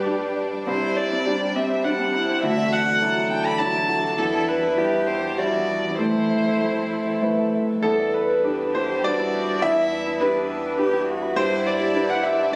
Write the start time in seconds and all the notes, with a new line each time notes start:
Already playing: G2 G3 D4 G4 B4 D5 F#5
0.06 G3 D4 B4 D5
0.21 G4
0.36 D5
0.51 D5
0.66 C2 C4 E4 C5
0.82 D5
0.97 C5 D5
1.12 C4
1.26 G3 D4 G4 D5
1.41 G4
1.55 C4 E5
1.70 C5
1.84 G3 D4 G4 D5 F#5
1.99 C4
2.14 E4 C5
2.28 C5
2.43 D2 E3 D4 F#4 A4 E5
2.57 D5
2.72 A4 F#5
2.86 D4
3.01 F#3 D4 E4 F#4 D5
3.16 F#4
3.30 D4 G5
3.44 A4 B5
3.58 F#3 E4 F#4 D5 A5
3.74 D4
3.89 F#4 A4
4.04 A4
4.18 E2 G3 E4 A4
4.34 D5
4.48 B4 B5
4.62 E4
4.77 G3 E4 G4 D5
5.07 E4 C5
5.37 G3 E4 F#4 D5
5.52 E4
5.97 A2 C4 E4 A4 C5
6.13 A5
6.29 E5
6.45 A4
6.61 A3 E4 C5
6.77 C5
6.93 A4
7.08 E5
7.22 A3 E4 B4 C5
7.39 A4
7.54 E5
7.70 E5
7.83 E2 G3 D4 E4 A4 B4
7.99 D5
8.14 B4
8.30 E4
8.42 D4 G4 B4
8.74 E4 G4 C5
9.04 G3 D4 F#4 B4 D5
9.19 E4
9.62 E2 E4 E5
9.77 D5
10.06 E4
10.20 D4 G4 B4
10.34 G4
10.49 E4
10.78 D4 G4 B4
10.93 E4
11.09 F#4
11.22 B5
11.36 G2 G3 D4 E4 G4 C5 D5
11.51 F#5
11.66 D5
11.80 G4
11.94 D4 G4 B4
12.10 F#5
12.23 G4 E5
12.39 D5
12.52 D4